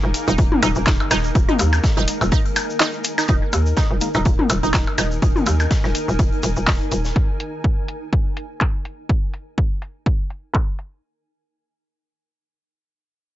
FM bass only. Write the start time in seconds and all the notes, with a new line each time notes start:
0.04 D#1
0.28 D#1
0.38 D#1
0.63 D#1
0.76 D#1
0.87 D#1
1.11 D#1
1.35 D#1
1.59 D#2
1.97 D#1
2.21 D#1
3.29 D#1
3.53 D#2
3.91 D#1
4.15 D#1
4.26 D#1
4.50 D#1
4.63 D#1
4.74 D#1
4.98 D#1
5.22 D#1
5.46 D#2
5.84 D#1
6.08 D#1
6.19 D#1
6.43 D#1
6.57 D#1
6.67 D#1
6.92 D#1